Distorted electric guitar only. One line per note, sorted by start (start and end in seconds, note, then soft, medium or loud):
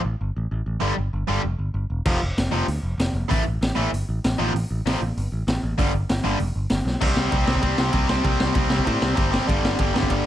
0.81 0.94 G2 medium
0.81 0.94 D3 loud
0.81 0.94 G3 loud
1.28 1.40 G2 medium
1.28 1.41 D3 medium
1.28 1.41 G3 loud
2.06 2.18 F2 medium
2.06 2.19 C3 loud
2.06 2.19 F3 loud
2.51 2.64 F2 medium
2.51 2.65 C3 medium
2.51 2.65 F3 medium
3.29 3.42 A2 loud
3.29 3.43 E3 medium
3.29 3.43 A3 loud
3.76 3.89 A2 medium
3.76 3.89 E3 medium
3.76 3.89 A3 medium
4.38 4.51 F2 medium
4.38 4.52 C3 loud
4.38 4.52 F3 loud
4.86 4.98 F2 medium
4.86 4.99 C3 medium
4.86 4.99 F3 loud
5.78 5.90 G2 loud
5.78 5.91 D3 loud
5.78 5.91 G3 loud
6.24 6.36 G2 medium
6.24 6.37 D3 loud
6.24 6.37 G3 medium
7.01 7.30 C3 loud
7.01 7.31 G3 loud
7.01 7.32 C4 loud
7.31 7.48 C3 medium
7.31 7.47 G3 medium
7.31 7.46 C4 medium
7.47 7.60 C3 medium
7.47 7.62 G3 medium
7.47 7.61 C4 medium
7.61 7.91 C3 medium
7.61 7.92 G3 loud
7.61 7.92 C4 medium
7.92 8.09 C3 medium
7.92 8.09 G3 medium
7.92 8.07 C4 medium
8.09 8.23 C3 medium
8.09 8.24 G3 medium
8.09 8.24 C4 medium
8.24 8.53 C3 loud
8.24 8.55 G3 loud
8.24 8.55 C4 loud
8.55 8.70 C3 medium
8.55 8.70 G3 medium
8.55 8.69 C4 medium
8.70 8.84 C3 medium
8.70 8.85 G3 medium
8.70 8.86 C4 medium
8.85 9.14 C3 medium
8.85 9.16 G3 loud
8.85 9.16 C4 loud
9.15 9.32 C3 medium
9.15 9.32 G3 medium
9.15 9.31 C4 loud
9.32 9.47 C3 medium
9.32 9.48 G3 medium
9.32 9.47 C4 loud
9.47 9.78 G2 loud
9.47 9.78 D3 loud
9.47 9.80 G3 loud
9.79 9.95 G2 medium
9.79 9.94 D3 medium
9.79 9.94 G3 medium
9.94 10.09 G2 medium
9.94 10.10 D3 medium
9.94 10.10 G3 medium
10.10 10.26 G2 medium
10.10 10.26 D3 loud
10.10 10.26 G3 loud